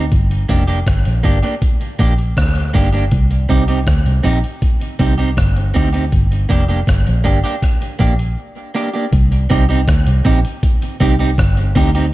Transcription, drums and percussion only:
0.12 kick loud
0.12 closed hi-hat medium
0.31 closed hi-hat soft
0.49 kick medium
0.49 closed hi-hat medium
0.68 closed hi-hat soft
0.87 kick loud
0.87 cross-stick loud
0.87 closed hi-hat loud
1.05 closed hi-hat medium
1.24 kick medium
1.24 closed hi-hat medium
1.43 closed hi-hat medium
1.62 kick loud
1.62 closed hi-hat loud
1.81 closed hi-hat medium
1.99 kick medium
1.99 closed hi-hat medium
2.18 closed hi-hat soft
2.37 kick loud
2.37 cross-stick loud
2.37 closed hi-hat medium
2.56 closed hi-hat soft
2.74 kick medium
2.74 open hi-hat medium
2.93 closed hi-hat medium
3.11 kick loud
3.11 closed hi-hat medium
3.31 closed hi-hat soft
3.49 kick medium
3.49 closed hi-hat medium
3.68 closed hi-hat soft
3.87 kick loud
3.87 cross-stick loud
3.87 closed hi-hat medium
4.06 closed hi-hat medium
4.24 kick medium
4.24 closed hi-hat medium
4.44 closed hi-hat medium
4.62 kick loud
4.62 closed hi-hat medium
4.81 closed hi-hat medium
5.00 kick medium
5.00 closed hi-hat medium
5.19 closed hi-hat soft
5.37 kick loud
5.37 cross-stick loud
5.37 closed hi-hat medium
5.56 closed hi-hat soft
5.75 kick medium
5.75 open hi-hat medium
5.94 closed hi-hat medium
6.12 kick loud
6.12 closed hi-hat medium
6.32 closed hi-hat medium
6.50 kick medium
6.50 closed hi-hat medium
6.70 closed hi-hat soft
6.87 kick loud
6.87 cross-stick loud
6.87 closed hi-hat loud
7.07 closed hi-hat medium
7.25 kick medium
7.25 closed hi-hat medium
7.45 closed hi-hat medium
7.62 kick loud
7.62 cross-stick medium
7.62 closed hi-hat loud
7.82 closed hi-hat medium
8.00 kick medium
8.00 closed hi-hat medium
8.19 closed hi-hat soft
9.13 kick loud
9.13 closed hi-hat medium
9.32 closed hi-hat medium
9.50 kick medium
9.50 closed hi-hat medium
9.70 closed hi-hat medium
9.88 kick loud
9.88 cross-stick loud
9.88 closed hi-hat loud
10.07 closed hi-hat medium
10.25 kick medium
10.25 closed hi-hat medium
10.45 closed hi-hat medium
10.63 kick loud
10.63 closed hi-hat loud
10.82 closed hi-hat medium
11.00 kick medium
11.00 closed hi-hat medium
11.20 closed hi-hat medium
11.38 kick loud
11.38 cross-stick loud
11.38 closed hi-hat medium
11.57 closed hi-hat soft
11.76 kick medium
11.76 open hi-hat medium
11.95 closed hi-hat medium

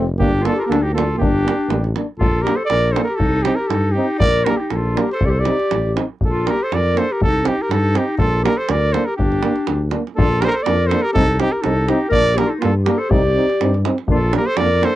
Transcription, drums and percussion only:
0.20 davul low medium
0.45 davul high medium
0.72 davul high medium
0.98 davul high medium
1.22 davul low medium
1.48 davul high medium
1.70 davul high medium
1.84 davul high soft
1.96 davul high medium
2.21 davul low medium
2.47 davul high medium
2.70 davul high medium
2.96 davul high medium
3.20 davul low medium
3.45 davul high medium
3.70 davul high medium
4.20 davul low medium
4.46 davul high medium
4.70 davul high medium
4.97 davul high medium
5.21 davul low medium
5.45 davul high medium
5.60 davul high soft
5.71 davul high medium
5.97 davul high medium
6.21 davul low medium
6.47 davul high medium
6.72 davul high medium
6.97 davul high medium
7.22 davul low medium
7.45 davul high medium
7.71 davul high medium
7.95 davul high medium
8.18 davul low medium
8.46 davul high medium
8.69 davul high medium
8.94 davul high medium
9.19 davul low medium
9.32 davul high soft
9.43 davul high medium
9.56 davul high soft
9.67 davul high medium
9.91 davul high medium
10.07 davul high soft
10.19 davul low loud
10.42 davul high medium
10.66 davul high medium
10.91 davul high medium
11.16 davul low medium
11.40 davul high medium
11.64 davul high medium
11.88 davul high medium
12.12 davul low medium
12.38 davul high medium
12.62 davul high medium
12.86 davul high medium
13.11 davul low loud
13.50 davul high soft
13.61 davul high medium
13.74 davul high soft
13.85 davul high medium
13.98 davul high soft
14.08 davul low medium
14.33 davul high medium
14.57 davul high medium
14.83 davul high medium

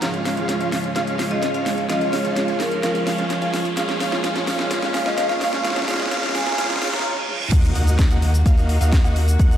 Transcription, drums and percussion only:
0.02 snare medium
0.02 closed hi-hat medium
0.14 closed hi-hat soft
0.25 snare medium
0.25 open hi-hat loud
0.37 closed hi-hat soft
0.49 snare medium
0.49 closed hi-hat medium
0.61 closed hi-hat soft
0.72 snare medium
0.72 open hi-hat loud
0.84 closed hi-hat soft
0.96 snare medium
0.96 closed hi-hat medium
1.07 closed hi-hat soft
1.19 snare medium
1.19 open hi-hat loud
1.31 closed hi-hat soft
1.43 snare medium
1.43 closed hi-hat medium
1.54 closed hi-hat soft
1.66 snare medium
1.66 open hi-hat loud
1.78 closed hi-hat soft
1.89 snare medium
1.89 closed hi-hat medium
2.01 closed hi-hat soft
2.13 snare medium
2.13 open hi-hat loud
2.25 closed hi-hat soft
2.36 snare medium
2.36 closed hi-hat medium
2.48 closed hi-hat soft
2.60 snare medium
2.60 open hi-hat loud
2.72 closed hi-hat soft
2.83 snare medium
2.83 closed hi-hat medium
2.95 closed hi-hat soft
3.07 snare medium
3.07 open hi-hat loud
3.18 closed hi-hat soft
3.30 snare medium
3.30 closed hi-hat medium
3.42 closed hi-hat soft
3.54 snare medium
3.54 open hi-hat loud
3.65 closed hi-hat soft
3.77 snare loud
3.77 closed hi-hat loud
3.89 snare medium
3.89 closed hi-hat soft
4.00 snare medium
4.00 open hi-hat loud
4.12 snare medium
4.12 closed hi-hat soft
4.24 snare medium
4.24 closed hi-hat medium
4.36 snare medium
4.36 closed hi-hat soft
4.47 snare medium
4.47 open hi-hat loud
4.59 snare medium
4.59 closed hi-hat soft
4.71 snare loud
4.71 closed hi-hat medium
4.82 snare medium
4.82 closed hi-hat soft
4.94 snare loud
4.94 open hi-hat loud
5.06 snare medium
5.06 closed hi-hat soft
5.18 snare medium
5.18 closed hi-hat loud
5.29 snare medium
5.29 closed hi-hat soft
5.41 snare loud
5.41 open hi-hat loud
5.53 snare medium
5.53 closed hi-hat soft
5.64 snare loud
5.64 closed hi-hat loud
5.70 snare medium
5.76 snare medium
5.76 closed hi-hat soft
5.82 snare medium
5.88 snare loud
5.88 open hi-hat loud
5.94 snare medium
6.00 snare medium
6.00 closed hi-hat soft
6.06 snare medium
6.11 snare loud
6.11 closed hi-hat medium
6.17 snare medium
6.23 snare medium
6.23 closed hi-hat soft
6.29 snare medium
6.35 snare loud
6.35 open hi-hat loud
6.41 snare medium
6.47 snare loud
6.47 closed hi-hat soft
6.52 snare loud
6.58 snare loud
6.58 closed hi-hat loud
6.64 snare loud
6.70 snare medium
6.70 closed hi-hat soft
6.76 snare loud
6.82 snare loud
6.82 open hi-hat loud
6.88 snare loud
6.93 snare loud
6.93 closed hi-hat soft
6.99 snare loud
7.17 high tom medium
7.29 mid tom medium
7.40 mid tom medium
7.52 kick loud
7.52 closed hi-hat loud
7.52 crash loud
7.52 shaker medium
7.64 closed hi-hat soft
7.64 shaker soft
7.75 open hi-hat loud
7.87 closed hi-hat soft
7.87 shaker medium
7.99 kick loud
7.99 snare loud
7.99 closed hi-hat medium
7.99 shaker medium
8.11 closed hi-hat soft
8.11 shaker soft
8.22 open hi-hat loud
8.34 closed hi-hat soft
8.34 shaker medium
8.46 kick loud
8.46 closed hi-hat loud
8.46 shaker medium
8.57 closed hi-hat soft
8.57 shaker soft
8.69 open hi-hat loud
8.81 closed hi-hat soft
8.81 shaker medium
8.92 kick loud
8.92 snare loud
8.92 closed hi-hat medium
8.92 shaker medium
9.04 closed hi-hat soft
9.04 shaker soft
9.16 open hi-hat loud
9.28 closed hi-hat soft
9.28 shaker medium
9.39 kick loud
9.39 closed hi-hat loud
9.39 shaker medium
9.51 closed hi-hat soft
9.51 shaker soft

